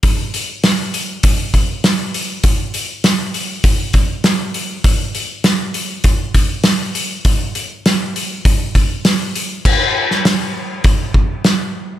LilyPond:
\new DrumStaff \with { instrumentName = "Drums" } \drummode { \time 4/4 \tempo 4 = 100 <hho bd>8 hho8 <hho sn>8 hho8 <hho bd>8 <hho bd>8 <hho sn>8 hho8 | <hho bd>8 hho8 <hho sn>8 hho8 <hho bd>8 <hho bd>8 <hho sn>8 hho8 | <hho bd>8 hho8 <hho sn>8 hho8 <hho bd>8 <hho bd>8 <hho sn>8 hho8 | <hho bd>8 hho8 <hho sn>8 hho8 <hho bd>8 <hho bd>8 <hho sn>8 hho8 |
<cymc bd>8. sn16 <hho sn>4 <hho bd>8 bd8 <hho sn>4 | }